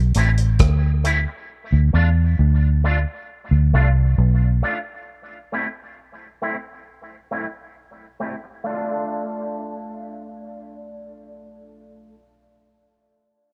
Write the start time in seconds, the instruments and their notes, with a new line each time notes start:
Already playing: fingered electric bass B1
0.15 fingered electric bass A1, clean electric guitar A3 C4 E4, closed hi-hat
0.38 closed hi-hat
0.59 fingered electric bass D2, kick, cross-stick, closed hi-hat
1.04 clean electric guitar A3 C4 E4, closed hi-hat
1.28 muted clean electric guitar stroke
1.72 fingered electric bass D2
1.93 fingered electric bass E2, clean electric guitar A3 D4 F4
2.39 fingered electric bass D2
2.84 clean electric guitar A3 D4 F4
3.51 fingered electric bass D2
3.73 fingered electric bass C2, clean electric guitar A3 D4 F4
4.18 fingered electric bass B1
4.62 clean electric guitar A3 D4 F4
5.52 clean electric guitar A3 C4 E4
6.42 clean electric guitar A3 C4 E4
7.31 clean electric guitar A3 C4 E4
8.20 clean electric guitar A3 C4 E4
8.44 muted clean electric guitar stroke
8.64 clean electric guitar A3 D4
8.69 clean electric guitar F4